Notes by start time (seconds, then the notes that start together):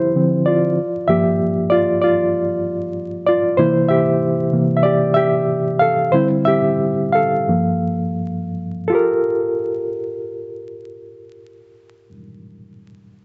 Already playing: D3 F3 C4 E4 G4 C5 E5
0.16 D3 F3 C4
0.46 F4 D5
1.08 G2 F3 A#3 G4 E5
1.70 F4 D5
2.02 F4 D5
3.26 F4 D5
3.57 C3 E3 A#3 E4 C5
3.89 G4 E5
4.52 C3 E3 A#3
4.77 E5
4.83 G4 D5
5.14 G4 E5
5.79 A4 F5
6.12 D3 G3 C4 E4 C5
6.45 G4 E5
7.12 A4 F5
7.48 G2 F3 A#3
8.88 F4 A4
8.92 G4 A#4